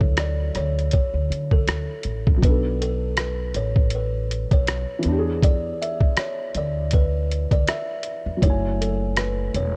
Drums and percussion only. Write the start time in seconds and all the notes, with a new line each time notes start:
0.01 kick
0.17 cross-stick, closed hi-hat
0.55 cross-stick, closed hi-hat
0.79 closed hi-hat
0.91 kick, closed hi-hat
1.32 closed hi-hat
1.51 kick
1.68 cross-stick, closed hi-hat
2.03 closed hi-hat
2.27 kick
2.42 kick, closed hi-hat
2.82 closed hi-hat
3.17 cross-stick, closed hi-hat
3.54 closed hi-hat
3.76 kick
3.90 closed hi-hat
4.31 closed hi-hat
4.51 kick, closed hi-hat
4.67 cross-stick, closed hi-hat
5.03 closed hi-hat
5.43 kick, closed hi-hat
5.83 closed hi-hat
6.01 kick
6.17 cross-stick, closed hi-hat
6.55 closed hi-hat
6.91 kick, closed hi-hat
7.31 closed hi-hat
7.51 kick, closed hi-hat
7.67 cross-stick, closed hi-hat
8.03 closed hi-hat
8.42 kick, closed hi-hat
8.82 closed hi-hat
9.16 cross-stick, closed hi-hat
9.54 closed hi-hat